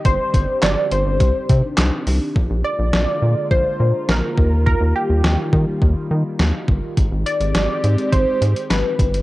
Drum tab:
HH |x-x-x-x-x-x-x-o-|----------------|----------------|x-xxx-xxx-xxx-xx|
CP |----x-------x---|----------------|----------------|----------------|
SD |----o-------o---|----o-------o---|----o-------o---|----o-------o---|
BD |o-o-----o-o-----|o-------o-----o-|o-----o-o-----o-|o-------o-----o-|